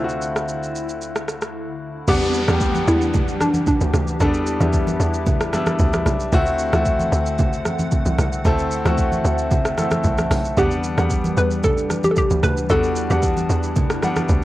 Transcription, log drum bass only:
2.08 2.47 E2 loud
2.48 2.86 E2 loud
2.88 3.39 E2 loud
3.81 3.93 D2 medium
3.94 4.19 D2 loud
4.20 4.59 E2 loud
4.60 4.98 E2 loud
5.00 5.51 E2 loud
5.79 6.05 D2 loud
6.06 6.32 B1 medium
6.33 6.72 D2 loud
6.73 7.11 D2 loud
7.12 7.63 D2 loud
8.06 8.18 C2 loud
8.19 8.44 C2 loud
8.45 8.84 D2 loud
8.85 9.23 D2 loud
9.25 9.76 D2 loud
10.04 10.30 C2 medium
10.31 10.56 B1 medium
10.57 10.96 E2 loud
10.98 11.36 E2 loud
11.37 11.88 E2 loud
12.31 12.43 D2 medium
12.43 12.69 D2 medium
12.70 13.09 E2 loud
13.10 13.48 E2 loud
13.49 14.01 E2 loud
14.29 14.44 D2 loud

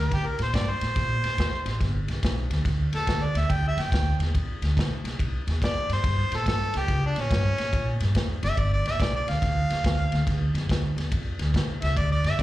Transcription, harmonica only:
0.00 0.12 A#4 medium
0.13 0.28 G4 loud
0.27 0.40 A#4 medium
0.43 0.56 C5 medium
0.54 0.72 D5 medium
0.70 1.92 C5 loud
2.96 3.26 A4 loud
3.24 3.40 D5 medium
3.38 3.53 E5 medium
3.52 3.65 G5 medium
3.68 3.83 E5 medium
3.81 4.21 G5 medium
5.64 5.90 D5 loud
5.93 6.36 C5 medium
6.35 6.47 A4 medium
6.48 6.74 A4 loud
6.77 7.03 G4 loud
7.06 7.22 D4 medium
7.20 8.00 C#4 loud
8.46 8.60 E5 loud
8.59 8.72 D5 loud
8.73 8.86 D5 loud
8.88 9.03 E5 loud
9.02 9.14 D5 medium
9.15 9.31 D5 medium
9.29 10.52 F5 loud
11.84 11.97 E5 loud
11.97 12.11 D5 loud
12.12 12.25 D5 medium
12.26 12.41 E5 loud
12.40 12.43 D5 medium

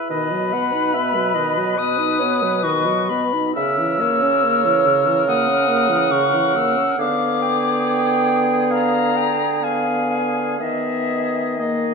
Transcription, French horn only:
0.10 0.33 D#3 medium
0.31 0.55 F#3 medium
0.53 0.75 B3 medium
0.74 0.96 D#4 medium
0.95 1.17 B3 medium
1.16 1.38 F#3 medium
1.36 1.59 D#3 medium
1.57 1.78 F#3 medium
1.79 2.01 B3 medium
1.99 2.23 D#4 medium
2.21 2.44 B3 medium
2.43 2.65 F#3 medium
2.64 2.87 D#3 medium
2.86 3.12 F#3 medium
3.10 3.35 B3 medium
3.33 3.56 D#4 medium
3.57 3.80 C#3 medium
3.78 4.02 E3 medium
4.00 4.24 A#3 medium
4.22 4.46 C#4 medium
4.44 4.66 A#3 medium
4.65 4.88 E3 medium
4.87 5.09 C#3 medium
5.07 5.28 E3 medium
5.28 5.50 A#3 medium
5.49 5.71 C#4 medium
5.69 5.91 A#3 medium
5.90 6.14 E3 medium
6.12 6.35 C#3 medium
6.34 6.57 E3 medium
6.55 6.79 A#3 medium
6.77 6.98 C#4 medium
6.99 9.45 B3 medium
9.62 10.58 B3 medium
10.60 11.57 B3 medium
11.59 11.94 A#3 medium

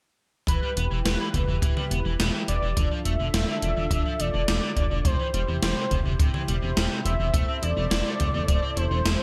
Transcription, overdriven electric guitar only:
0.48 0.59 E3 medium
0.63 0.70 G3 medium
0.77 0.84 B3 medium
0.91 0.98 E3 medium
1.05 1.16 B3 loud
1.19 1.27 E3 medium
1.34 1.41 E3 medium
1.48 1.55 E3 loud
1.62 1.73 E3 loud
1.76 1.84 G3 medium
1.91 1.98 B3 medium
2.05 2.12 E3 medium
2.19 2.30 B3 medium
2.34 2.41 E3 medium
2.48 2.55 E3 medium
2.62 2.70 E3 loud
2.77 2.88 D3 medium
2.91 2.98 F3 medium
3.05 3.13 A3 medium
3.20 3.27 D3 medium
3.34 3.45 A3 loud
3.48 3.55 D3 medium
3.62 3.70 D3 medium
3.77 3.84 D3 loud
3.91 4.02 D3 loud
4.05 4.13 F3 medium
4.20 4.27 A3 medium
4.34 4.41 D3 medium
4.48 4.59 A3 loud
4.62 4.70 D3 medium
4.77 4.84 D3 medium
4.91 4.98 D3 loud
5.05 5.16 C3 medium
5.19 5.27 E3 medium
5.34 5.41 G3 medium
5.48 5.55 C3 medium
5.62 5.73 G3 loud
5.77 5.84 C3 medium
5.91 5.98 C3 medium
6.05 6.12 C3 loud
6.20 6.30 C3 loud
6.34 6.41 E3 medium
6.48 6.55 G3 medium
6.62 6.70 C3 medium
6.77 6.87 G3 loud
6.91 6.98 C3 medium
7.05 7.12 C3 medium
7.20 7.27 C3 loud
7.34 7.45 A3 loud
7.48 7.55 C4 medium
7.63 7.70 E4 medium
7.77 7.84 A3 medium
7.91 8.02 E4 loud
8.06 8.13 A3 medium
8.20 8.27 A3 medium
8.34 8.41 A3 loud
8.48 8.59 A3 loud
8.62 8.70 C4 medium
8.77 8.84 E4 medium
8.91 8.98 A3 medium
9.05 9.16 E4 medium
9.20 9.23 A3 medium

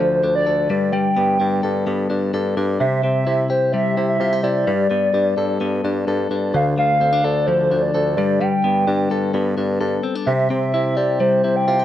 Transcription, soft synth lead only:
0.00 0.35 C5 medium
0.35 0.68 D5 loud
0.71 0.94 D5 loud
0.92 1.86 G5 loud
2.80 3.02 E5 medium
3.03 3.47 E5 loud
3.50 3.72 C5 loud
3.72 4.05 E5 loud
4.09 4.45 E5 loud
4.43 6.07 D5 loud
6.55 6.65 F5 medium
6.79 7.26 F5 loud
7.24 7.48 D5 loud
7.46 7.83 C5 loud
7.82 8.16 D5 loud
8.16 8.41 D5 medium
8.39 9.33 G5 loud
10.26 10.48 E5 medium
10.50 10.98 E5 loud
10.97 11.19 D5 loud
11.20 11.57 C5 loud
11.56 11.85 G5 loud

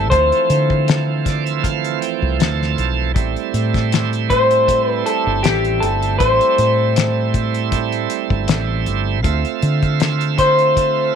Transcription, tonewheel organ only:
0.10 3.13 E3 medium
0.10 3.11 F3 medium
0.10 3.12 A3 medium
0.10 3.12 C4 medium
1.25 1.44 D5 medium
1.46 1.62 E5 medium
1.63 1.99 F5 medium
2.01 2.37 G5 medium
2.39 3.12 A5 medium
3.14 9.20 G3 medium
3.14 9.20 A3 medium
3.14 9.21 C4 medium
3.14 9.21 E4 medium
9.23 11.15 A3 medium
9.23 11.15 C4 medium
9.23 11.15 F4 medium
9.23 11.15 E5 medium

